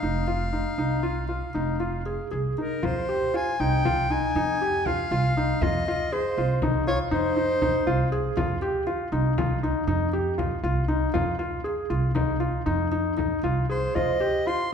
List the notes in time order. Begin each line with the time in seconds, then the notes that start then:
Already playing: F5
0.02 F1 D#4
0.28 F4
0.53 D#4
0.78 C2 D#4
1.03 F4
1.29 F4
1.54 F1 D#4
1.80 F4
2.06 G#4
2.31 C2 G#4
2.58 D#4 A#4
2.83 F2 F4 C5, frame drum
3.09 G4
3.34 F4 G#5
3.60 C2 D#4 G5
3.85 F4, frame drum
4.10 D#4 G#5
4.35 F2 D#4
4.61 G4
4.86 F4 F5, frame drum
5.11 C2 F4
5.37 D#4
5.61 F2 F4 D#5, frame drum
5.88 F4
6.12 G#4 C5
6.37 C2 F4
6.62 D#4, frame drum
6.87 F4 C#5
7.11 F2 D#4 C5
7.37 D#4
7.62 D#4, frame drum
7.87 C2 F4
8.12 G#4
8.37 F2 F4, frame drum
8.62 G4
8.87 F4
9.12 C2 D#4
9.38 F4, frame drum
9.63 D#4
9.87 F2 D#4
10.13 G4
10.38 F4, frame drum
10.63 C2 F4
10.88 D#4
11.14 F2 F4, frame drum
11.39 F4, frame drum
11.64 G#4
11.90 C2 F4
12.15 D#4, frame drum
12.40 F4
12.66 F2 D#4
12.92 D#4, frame drum
13.17 D#4, frame drum
13.43 C2 F4, frame drum
13.70 G#4 C5
13.95 F2 F4 C5 D#5, frame drum
14.20 G4
14.47 F4 C6